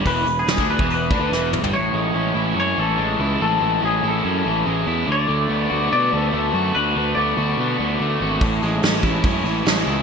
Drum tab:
HH |o-o-o-o-o-o-----|----------------|----------------|----------------|
SD |----oo------o---|----------------|----------------|----------------|
T2 |--------------o-|----------------|----------------|----------------|
FT |---------------o|----------------|----------------|----------------|
BD |o----o-o--o-----|----------------|----------------|----------------|

HH |----------------|o-o-o-o-o-o-o-o-|
SD |----------------|----o-------o---|
T2 |----------------|----------------|
FT |----------------|----------------|
BD |----------------|o-----o-o-------|